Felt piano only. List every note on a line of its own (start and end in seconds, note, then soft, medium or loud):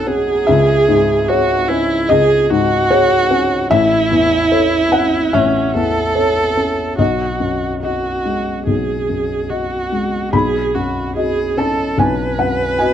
0.00 0.43 B1 medium
0.00 0.50 F#2 medium
0.00 0.07 C#4 medium
0.00 0.50 D#4 medium
0.00 0.50 C#5 medium
0.00 0.49 D#5 medium
0.00 0.43 F#5 medium
0.07 0.47 C#4 medium
0.47 2.06 C#2 medium
0.47 2.05 E5 loud
0.88 1.53 G#2 medium
1.29 1.65 G#4 medium
1.29 1.65 C#5 medium
1.70 2.34 C#4 medium
2.09 3.67 C#2 medium
2.09 2.86 D#5 loud
2.50 3.15 G#2 medium
2.90 3.27 G#4 medium
2.90 3.28 C#5 loud
3.31 3.71 C#4 medium
3.71 5.29 A1 medium
3.71 4.88 E5 loud
4.11 4.76 E2 medium
4.51 4.88 A4 medium
4.51 4.88 C#5 medium
4.92 5.58 C#4 medium
4.92 5.30 F#5 loud
5.33 6.95 A1 medium
5.33 6.94 E5 loud
5.75 6.41 E2 medium
6.15 6.53 A4 medium
6.15 6.53 C#5 medium
6.57 6.98 C#4 soft
6.98 8.62 B1 medium
6.98 7.81 D#5 medium
7.40 8.07 F#2 soft
7.83 8.21 F#4 soft
7.83 8.21 D#5 soft
8.25 8.92 G#3 soft
8.67 10.29 B1 soft
9.09 9.75 F#2 soft
9.50 9.87 F#4 soft
9.50 9.88 D#5 soft
9.92 10.33 G#3 soft
10.33 11.94 B1 medium
10.33 11.53 B5 medium
10.75 11.41 F#2 soft
11.16 11.53 F#4 soft
11.16 11.54 D#5 medium
11.57 12.22 C#4 soft
11.57 11.96 A5 medium
11.98 12.94 B1 medium
11.98 12.36 G#5 medium
12.39 12.94 F#2 soft
12.39 12.76 F#5 medium
12.78 12.94 F#4 soft
12.78 12.94 D#5 medium
12.78 12.94 G#5 medium